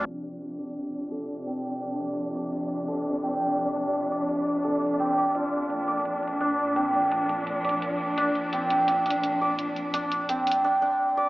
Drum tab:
HH |x-------x---------------x-------|x----x--x---xx--x-------x---x---|x---x---x---xx--x-------x---x---|x---x---x---xx--x-------x---x---|

HH |x---x---x---xx--x-------x---x---|x---x---x---xx--x-------x---x---|x---x---x---xx--x-------x---x---|x---x---x---xx------------------|